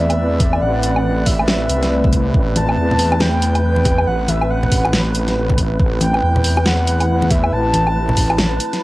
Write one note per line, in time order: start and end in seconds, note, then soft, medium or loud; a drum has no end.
0.00 0.60 E2 loud
0.00 8.83 A3 medium
0.00 8.83 C4 medium
0.00 8.83 B4 medium
0.00 2.33 D5 medium
0.00 0.63 E5 loud
0.10 closed hi-hat soft
0.10 low woodblock medium
0.40 kick loud
0.40 closed hi-hat medium
0.53 low woodblock medium
0.62 1.25 A1 loud
0.62 1.28 F#5 loud
0.83 closed hi-hat medium
0.96 low woodblock medium
1.26 1.68 A1 loud
1.26 1.47 E5 loud
1.26 kick medium
1.26 open hi-hat medium
1.39 low woodblock medium
1.48 2.09 E5 medium
1.48 snare loud
1.69 2.33 C2 loud
1.69 closed hi-hat medium
1.83 snare soft
1.83 closed hi-hat soft
2.04 kick loud
2.13 kick medium
2.13 closed hi-hat medium
2.34 2.76 A1 loud
2.34 5.79 B4 medium
2.34 kick loud
2.56 3.22 A5 loud
2.56 closed hi-hat medium
2.56 high conga medium
2.68 high bongo soft
2.68 low woodblock medium
2.77 4.06 E2 medium
2.91 low conga medium
2.99 open hi-hat medium
3.12 high bongo medium
3.12 low woodblock medium
3.20 4.06 G5 loud
3.20 snare loud
3.20 high conga medium
3.42 closed hi-hat medium
3.55 closed hi-hat soft
3.55 low woodblock medium
3.76 high conga medium
3.85 kick loud
3.85 closed hi-hat medium
3.85 high bongo medium
3.98 low woodblock medium
4.07 4.70 A1 loud
4.07 4.30 F#5 medium
4.28 4.52 E5 medium
4.28 closed hi-hat medium
4.28 high conga medium
4.41 high bongo soft
4.41 low woodblock medium
4.50 4.93 F#5 medium
4.63 low conga medium
4.72 5.78 A1 loud
4.72 kick medium
4.72 open hi-hat loud
4.85 high bongo medium
4.85 low woodblock medium
4.93 snare loud
4.93 high conga medium
5.15 closed hi-hat medium
5.28 snare soft
5.28 closed hi-hat soft
5.50 kick loud
5.50 high conga medium
5.58 kick medium
5.58 closed hi-hat medium
5.80 6.21 A1 loud
5.80 8.83 E4 medium
5.80 kick loud
6.01 6.68 G5 loud
6.01 closed hi-hat medium
6.01 high conga medium
6.14 high bongo soft
6.14 low woodblock medium
6.23 7.51 E2 loud
6.36 low conga loud
6.44 open hi-hat loud
6.57 high bongo medium
6.57 low woodblock medium
6.66 7.32 F#5 loud
6.66 snare loud
6.66 high conga medium
6.87 closed hi-hat medium
7.00 closed hi-hat soft
7.00 low woodblock medium
7.22 high conga loud
7.30 7.54 E5 medium
7.30 kick loud
7.30 closed hi-hat medium
7.30 high bongo medium
7.44 low woodblock medium
7.52 8.16 A1 loud
7.52 8.82 A5 loud
7.74 closed hi-hat medium
7.74 high conga medium
7.87 high bongo soft
7.87 low woodblock medium
8.09 low conga loud
8.17 8.59 A1 loud
8.17 kick medium
8.17 open hi-hat loud
8.30 high bongo medium
8.30 low woodblock medium
8.38 snare loud
8.38 high conga medium
8.60 closed hi-hat medium
8.73 snare soft
8.73 closed hi-hat soft